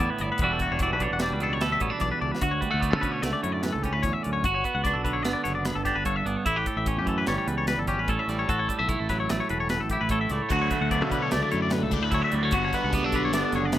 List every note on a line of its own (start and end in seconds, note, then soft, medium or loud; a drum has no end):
0.00 0.41 A2 medium
0.00 0.41 D3 medium
0.00 0.41 B3 medium
0.00 0.41 E4 medium
0.00 0.10 D5 medium
0.10 0.21 B4 medium
0.18 0.29 G1 medium
0.18 0.31 D5 medium
0.18 closed hi-hat medium
0.32 0.41 B4 medium
0.38 0.67 E1 medium
0.38 1.98 E2 medium
0.38 0.51 B4 medium
0.38 kick loud
0.38 closed hi-hat medium
0.43 0.81 E3 medium
0.43 1.20 G3 medium
0.43 0.99 D4 medium
0.43 0.81 F#4 medium
0.52 0.61 A4 medium
0.59 0.71 F#4 medium
0.59 kick medium
0.59 closed hi-hat medium
0.71 0.92 E1 loud
0.71 0.81 C#5 medium
0.79 2.40 E3 medium
0.79 1.61 F#4 soft
0.79 0.92 D5 medium
0.79 kick loud
0.79 closed hi-hat medium
0.92 1.10 B1 medium
0.92 1.02 B4 medium
1.00 1.40 D4 medium
1.00 1.12 C#5 medium
1.00 kick medium
1.00 closed hi-hat medium
1.11 1.29 E1 medium
1.11 1.22 F#5 medium
1.19 2.42 G3 medium
1.19 1.33 D5 medium
1.19 snare loud
1.19 closed hi-hat medium
1.32 1.62 C#2 medium
1.32 1.42 B4 medium
1.40 2.40 B2 medium
1.40 1.81 D4 medium
1.40 1.53 A4 medium
1.40 closed hi-hat medium
1.53 1.62 C#5 medium
1.61 1.80 D2 loud
1.61 2.40 A4 medium
1.61 1.72 B4 medium
1.61 snare medium
1.61 closed hi-hat medium
1.72 1.82 E5 medium
1.80 1.90 A1 medium
1.80 1.90 B3 medium
1.80 1.93 C#5 medium
1.80 kick medium
1.80 closed hi-hat medium
1.90 2.41 D4 soft
1.90 2.01 B4 medium
1.99 2.11 B1 medium
1.99 2.38 E2 medium
1.99 2.11 D5 medium
1.99 kick medium
1.99 snare soft
1.99 closed hi-hat medium
2.12 2.21 B4 medium
2.21 2.31 C#2 medium
2.21 2.31 D5 medium
2.21 high tom medium
2.31 2.42 B4 medium
2.31 snare medium
2.41 2.60 D2 medium
2.41 4.04 D2 medium
2.41 2.52 F#4 medium
2.41 4.42 F#4 medium
2.41 kick loud
2.41 closed hi-hat loud
2.51 2.61 C#5 medium
2.61 2.71 G3 medium
2.61 2.71 B4 medium
2.61 kick medium
2.61 closed hi-hat medium
2.71 2.93 D2 medium
2.71 3.21 A3 soft
2.71 2.81 F#5 medium
2.80 2.91 B3 medium
2.80 2.92 D5 medium
2.80 kick medium
2.80 closed hi-hat medium
2.91 3.20 B2 medium
2.91 3.83 C#4 soft
2.91 3.02 A4 medium
3.01 5.04 D3 medium
3.01 3.12 B4 medium
3.01 kick medium
3.01 closed hi-hat medium
3.12 3.22 C#5 medium
3.22 3.32 C#2 medium
3.22 4.42 A3 medium
3.22 3.32 D5 medium
3.22 snare loud
3.22 closed hi-hat medium
3.33 3.43 D5 medium
3.43 3.71 F#2 medium
3.43 4.44 A2 medium
3.43 3.52 C#5 medium
3.43 closed hi-hat medium
3.52 3.63 D5 medium
3.63 3.73 B4 medium
3.63 snare loud
3.63 closed hi-hat medium
3.73 3.96 C#2 medium
3.73 3.83 A4 medium
3.83 4.43 C#4 medium
3.83 3.93 G4 medium
3.83 kick medium
3.83 closed hi-hat medium
3.93 4.13 D2 medium
3.93 4.03 B4 medium
4.03 4.25 E2 medium
4.03 4.13 C#5 medium
4.03 kick medium
4.03 snare soft
4.03 closed hi-hat medium
4.13 4.23 E5 medium
4.23 4.44 D2 medium
4.23 4.45 F#2 medium
4.23 4.32 D5 medium
4.23 closed hi-hat medium
4.33 4.44 C#5 medium
4.44 4.62 G1 medium
4.44 4.54 F#4 medium
4.44 6.05 F#4 medium
4.44 kick loud
4.44 closed hi-hat medium
4.54 4.64 C#5 medium
4.64 5.24 B3 medium
4.64 4.75 B4 medium
4.64 kick medium
4.64 closed hi-hat medium
4.75 4.93 C#2 medium
4.75 4.83 F#5 medium
4.84 5.85 D4 medium
4.84 4.94 D5 medium
4.84 kick medium
4.84 snare soft
4.84 closed hi-hat medium
4.93 5.25 B1 medium
4.93 5.04 A4 medium
5.04 5.42 D3 medium
5.04 5.15 B4 medium
5.04 kick medium
5.04 closed hi-hat medium
5.13 5.23 C#5 medium
5.23 5.34 G1 loud
5.23 6.24 B3 medium
5.23 5.32 D5 medium
5.23 snare loud
5.23 closed hi-hat medium
5.33 5.43 D5 medium
5.44 5.73 F#1 medium
5.44 6.43 D3 medium
5.44 5.55 C#5 medium
5.44 snare soft
5.44 closed hi-hat medium
5.55 5.65 D5 medium
5.65 5.76 B4 medium
5.65 snare medium
5.65 closed hi-hat medium
5.75 5.94 G1 medium
5.75 5.85 A4 medium
5.85 6.44 D4 medium
5.85 5.96 G4 medium
5.85 kick medium
5.85 snare soft
5.85 closed hi-hat medium
5.95 6.23 G1 medium
5.95 6.05 B4 medium
6.05 6.44 G2 medium
6.05 6.44 A4 soft
6.05 6.16 C#5 medium
6.05 kick medium
6.05 closed hi-hat medium
6.16 6.26 E5 medium
6.26 6.35 G1 medium
6.26 6.44 B3 medium
6.26 6.36 D5 medium
6.26 closed hi-hat medium
6.36 6.46 C#5 medium
6.45 6.65 A1 medium
6.45 7.47 A2 medium
6.45 6.56 E4 medium
6.45 6.57 E4 medium
6.45 kick loud
6.45 closed hi-hat medium
6.56 8.08 G4 medium
6.56 6.67 B4 medium
6.66 6.77 A4 medium
6.66 kick medium
6.66 closed hi-hat medium
6.77 6.98 A1 medium
6.77 6.87 E5 medium
6.86 7.87 C#4 medium
6.86 6.97 C#5 medium
6.86 kick loud
6.86 closed hi-hat medium
6.97 7.24 F#2 medium
6.97 7.08 G4 medium
7.06 8.46 E3 medium
7.06 7.18 A4 medium
7.06 kick medium
7.06 closed hi-hat medium
7.18 7.27 B4 medium
7.27 7.37 G1 medium
7.27 8.28 G3 medium
7.27 7.37 C#5 medium
7.27 snare loud
7.27 closed hi-hat medium
7.38 7.48 C#5 medium
7.46 7.75 C#2 medium
7.46 8.08 E2 medium
7.46 7.57 B4 medium
7.46 closed hi-hat medium
7.58 7.67 C#5 medium
7.67 7.78 B4 medium
7.67 snare medium
7.67 closed hi-hat medium
7.78 7.99 G1 medium
7.78 7.88 A4 medium
7.87 8.72 C#4 medium
7.87 7.98 G4 medium
7.87 kick medium
7.87 closed hi-hat medium
7.99 8.17 A1 medium
7.99 8.09 B4 medium
8.08 8.47 A2 medium
8.08 8.49 A4 medium
8.08 8.19 C#5 medium
8.08 kick medium
8.08 closed hi-hat medium
8.19 8.29 E5 medium
8.28 8.46 A1 medium
8.28 8.49 G3 medium
8.28 8.39 D5 medium
8.28 snare soft
8.28 closed hi-hat medium
8.39 8.49 C#5 medium
8.48 8.67 A1 medium
8.48 9.48 A2 medium
8.48 8.59 F#4 medium
8.48 10.10 A4 medium
8.48 kick loud
8.48 closed hi-hat medium
8.59 8.69 C#5 medium
8.69 8.79 G3 medium
8.69 8.78 A4 medium
8.69 kick medium
8.69 closed hi-hat medium
8.79 8.98 B1 medium
8.79 9.29 A3 soft
8.79 8.89 E5 medium
8.89 9.90 E4 medium
8.89 9.00 C#5 medium
8.89 kick loud
8.89 closed hi-hat medium
9.00 9.27 A1 medium
9.00 9.09 A4 medium
9.09 11.12 F#3 medium
9.09 9.20 B4 medium
9.09 kick medium
9.09 snare soft
9.09 closed hi-hat medium
9.20 9.30 C#5 medium
9.29 9.39 A1 loud
9.29 10.31 A3 medium
9.29 9.40 D5 medium
9.29 snare loud
9.29 closed hi-hat loud
9.40 9.50 C#5 medium
9.49 9.78 E1 loud
9.49 10.10 A2 medium
9.49 9.60 B4 medium
9.49 closed hi-hat medium
9.60 9.70 C#5 medium
9.69 9.80 B4 medium
9.69 snare medium
9.69 closed hi-hat medium
9.80 9.99 A1 medium
9.80 9.91 A4 medium
9.90 10.50 E4 medium
9.90 10.01 G4 medium
9.90 kick medium
9.90 closed hi-hat medium
10.01 10.28 A1 medium
10.01 10.11 B4 medium
10.09 10.52 A2 medium
10.09 10.49 A4 soft
10.09 10.21 C#5 medium
10.09 kick medium
10.09 closed hi-hat medium
10.21 10.31 E5 medium
10.29 10.40 C#2 medium
10.29 10.50 A3 medium
10.29 10.42 D5 medium
10.29 snare soft
10.29 closed hi-hat medium
10.42 10.52 C#5 medium
10.49 10.69 D2 medium
10.49 12.11 D2 medium
10.49 11.91 D3 medium
10.49 11.91 F#3 loud
10.49 11.91 A3 medium
10.49 11.90 D4 medium
10.49 10.61 F#4 medium
10.49 12.11 F#4 medium
10.49 kick loud
10.49 closed hi-hat medium
10.62 10.71 C#5 medium
10.71 11.31 A3 medium
10.71 10.81 B4 medium
10.71 kick medium
10.71 snare soft
10.71 closed hi-hat medium
10.81 11.02 D2 medium
10.81 10.91 F#5 medium
10.91 11.02 B3 medium
10.91 11.02 D5 medium
10.91 kick medium
10.91 closed hi-hat medium
11.01 11.29 B2 medium
11.01 11.11 A4 medium
11.11 13.13 D3 medium
11.11 11.22 B4 medium
11.11 kick medium
11.11 closed hi-hat medium
11.22 11.32 C#5 medium
11.31 11.42 C#2 medium
11.31 12.31 A3 medium
11.31 11.41 D5 medium
11.31 snare loud
11.31 closed hi-hat medium
11.43 11.51 D5 medium
11.51 11.80 F#2 medium
11.51 12.53 A2 medium
11.51 11.62 C#5 medium
11.51 closed hi-hat medium
11.62 11.72 D5 medium
11.70 11.83 B4 medium
11.70 snare loud
11.70 closed hi-hat medium
11.83 12.02 C#2 medium
11.83 11.93 A4 medium
11.91 12.51 D3 medium
11.91 12.52 F#3 medium
11.91 12.52 A3 medium
11.91 12.52 D4 medium
11.91 12.03 G4 medium
11.91 kick medium
11.91 snare soft
11.91 closed hi-hat medium
12.02 12.21 D2 medium
12.02 12.13 B4 medium
12.11 12.53 D2 medium
12.11 12.22 E4 medium
12.11 12.24 C#5 medium
12.11 kick loud
12.11 snare soft
12.11 closed hi-hat medium
12.22 12.51 F#4 soft
12.22 12.35 E5 medium
12.32 12.52 D2 medium
12.32 12.43 G3 medium
12.32 12.44 D5 medium
12.32 closed hi-hat medium
12.43 12.53 A3 soft
12.43 12.54 C#5 medium
12.51 12.71 G1 medium
12.51 13.79 G2 medium
12.51 13.79 D3 medium
12.51 13.79 G3 loud
12.51 13.79 B3 medium
12.51 13.79 D4 medium
12.51 13.79 F#4 medium
12.51 12.64 F#4 medium
12.51 kick loud
12.51 closed hi-hat loud
12.65 12.74 C#5 medium
12.73 12.92 B3 medium
12.73 12.84 B4 medium
12.73 kick medium
12.73 snare soft
12.73 closed hi-hat medium
12.84 13.02 C#2 medium
12.84 12.94 F#5 medium
12.93 13.04 B3 medium
12.93 13.04 D5 medium
12.93 kick loud
12.93 closed hi-hat loud
13.04 13.33 B1 medium
13.04 13.79 D4 soft
13.04 13.15 A4 medium
13.12 13.56 D3 medium
13.12 13.25 B4 medium
13.12 kick medium
13.12 closed hi-hat medium
13.25 13.34 C#5 medium
13.33 13.43 G1 loud
13.33 13.79 B3 medium
13.33 13.43 D5 medium
13.33 snare loud
13.33 closed hi-hat loud
13.45 13.55 D5 medium
13.52 13.79 F#1 loud
13.52 13.65 C#5 medium
13.52 snare soft
13.52 closed hi-hat medium
13.57 13.79 D3 medium
13.65 13.74 D5 medium
13.72 13.79 B4 medium
13.72 snare loud
13.72 closed hi-hat medium